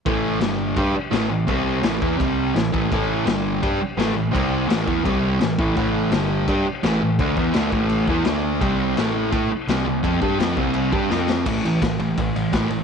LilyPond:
<<
  \new Staff \with { instrumentName = "Distorted electric guitar" } { \clef bass \time 4/4 \key a \minor \tempo 4 = 168 <a, e a>4 <g, d g>4 <g d' g'>8 r8 <a, e a>8 <a, e>8 | <c g c'>4 <a, e a>8 <e b e'>8 <c g c'>4 <a, e>8 <a, e a>8 | <a, e a>4 <g, d g>4 <g d' g'>8 r8 <a, e a>8 <a, e>8 | <c g c'>4 <a, e a>8 <e b e'>8 <c g c'>4 <a, e>8 <a, e a>8 |
<a, e a>4 <g, d g>4 <g d' g'>8 r8 <a, e a>8 <a, e>8 | <d a d'>8 <e b e'>8 <d a d'>8 <a, e a>4 <e b e'>8 <d a d'>4 | <c g c'>4 <a, e a>4 <a e' a'>8 r8 <c g c'>8 <c g>8 | <f c' f'>8 <g d' g'>8 <f c' f'>8 <c g c'>4 <g d' g'>8 <f c' f'>4 |
<a, e a>8 <a, e>8 <a, e>8 <a, e>8 <a, e>8 <a, e>8 <a, e a>8 <a, e>8 | }
  \new Staff \with { instrumentName = "Picked electric bass" } { \clef bass \time 4/4 \key a \minor a,,4 g,,4 g,8 r8 a,,8 a,,8 | c,4 a,,8 e,8 c,4 a,,8 a,,8 | a,,4 g,,4 g,8 r8 a,,8 a,,8 | c,4 a,,8 e,8 c,4 a,,8 a,,8 |
a,,4 g,,4 g,8 r8 a,,8 a,,8 | d,8 e,8 d,8 a,,4 e,8 d,4 | c,4 a,,4 a,8 r8 c,8 c,8 | f,8 g,8 f,8 c,4 g,8 f,4 |
a,,8 a,,8 a,,8 a,,8 a,,8 a,,8 a,,8 a,,8 | }
  \new DrumStaff \with { instrumentName = "Drums" } \drummode { \time 4/4 <cymc bd>4 <cymc sn>4 <cymc bd>4 <cymc sn>4 | <cymc bd>4 <cymc sn>8 bd8 <cymc bd>4 <cymc sn>8 bd8 | <cymc bd>4 <cymc sn>4 <cymc bd>4 <cymc sn>4 | <cymc bd>4 <cymc sn>8 bd8 <cymc bd>4 <cymc sn>8 bd8 |
<cymc bd>4 <cymc sn>4 <cymc bd>4 <cymc sn>4 | <cymc bd>8 bd8 <cymc sn>8 bd8 cymc8 bd8 <cymc sn>4 | <cymc bd>4 <cymc sn>4 <cymc bd>4 <cymc sn>4 | <cymc bd>8 bd8 <cymc sn>8 bd8 cymc8 bd8 sn8 sn8 |
<cymc bd>8 cymr8 <bd cymr sn>8 cymr8 <bd cymr>8 cymr8 <bd cymr sn>8 cymr8 | }
>>